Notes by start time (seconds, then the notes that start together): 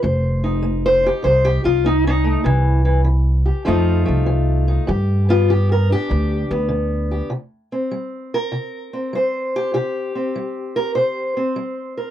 0.03 F1 F3 C5
0.44 D#4
0.62 A3
0.86 C5
1.04 D#4 G4
1.23 C2 C3 C5
1.45 G4
1.64 C2 D#4 F4
1.84 A3 D#4
2.07 D#4
2.24 A3
2.44 C2 C3 E3
2.85 E3
3.04 E3
3.46 G4
3.65 F2 F3 A3 D#4 F4
4.05 C2 A3
4.26 F3
4.68 D#4
4.87 G2 G4
5.29 B3 F4
5.49 D3 G4
5.72 A#4
5.90 D4 G4
6.09 D2 D3
6.51 D2 B3
6.69 D3
7.11 G4
7.30 C3
7.72 C4
7.91 G3
8.34 A#4
8.52 C3
8.93 C4
9.13 G3 C5
9.56 G4
9.74 C3 G4
10.15 C4
10.36 G3
10.76 A#4
10.95 C3 C5
11.37 C4
11.56 G3
11.97 A#4